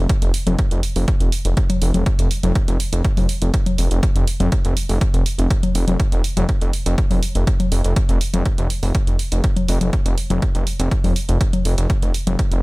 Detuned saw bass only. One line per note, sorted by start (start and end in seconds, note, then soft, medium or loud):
0.22 0.31 F1 medium
0.47 0.56 F1 medium
0.71 0.81 F1 medium
0.96 1.05 F1 medium
1.21 1.30 F1 medium
1.45 1.54 F1 medium
1.82 1.91 F1 loud
1.94 2.03 F1 medium
2.19 2.28 F1 medium
2.43 2.53 F1 medium
2.68 2.77 F1 medium
2.93 3.02 F1 medium
3.17 3.26 F1 medium
3.42 3.51 F1 medium
3.78 3.88 F1 loud
3.91 4.00 F1 medium
4.16 4.25 F1 medium
4.40 4.49 F1 medium
4.65 4.74 F1 medium
4.89 4.99 F1 medium
5.14 5.23 F1 medium
5.38 5.48 F1 medium
5.75 5.85 F1 loud
5.88 5.97 F1 medium
6.12 6.21 F1 medium
6.37 6.46 F1 medium
6.61 6.71 F1 medium
6.86 6.95 F1 medium
7.11 7.20 F1 medium
7.35 7.44 F1 medium
7.72 7.82 F1 medium
7.84 7.94 F1 medium
8.09 8.18 F1 medium
8.34 8.43 F1 medium
8.58 8.67 F1 medium
8.83 8.92 F1 medium
9.07 9.17 F1 medium
9.32 9.41 F1 medium
9.69 9.78 F1 loud
9.81 9.90 F1 medium
10.06 10.15 F1 medium
10.30 10.40 F1 medium
10.55 10.64 F1 medium
10.80 10.89 F1 medium
11.04 11.13 F1 medium
11.29 11.38 F1 medium
11.65 11.75 F1 loud
11.78 11.87 F1 medium
12.03 12.12 F1 medium
12.27 12.36 F1 medium
12.52 12.61 F1 medium